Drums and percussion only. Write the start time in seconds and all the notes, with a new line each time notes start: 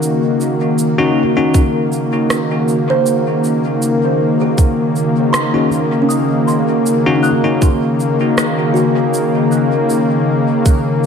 0.03 cabasa
0.40 cabasa
0.78 cabasa
1.54 kick, cabasa
1.92 cabasa
2.30 cross-stick, cabasa
2.68 cabasa
3.06 cabasa
3.44 cabasa
3.82 cabasa
4.58 kick, cabasa
4.96 cabasa
5.34 cross-stick, cabasa
5.72 cabasa
6.10 cabasa
6.48 cabasa
6.86 cabasa
7.24 cabasa
7.62 kick, cabasa
8.00 cabasa
8.38 cross-stick, cabasa
8.76 cabasa
9.14 cabasa
9.52 cabasa
9.90 cabasa
10.66 kick, cabasa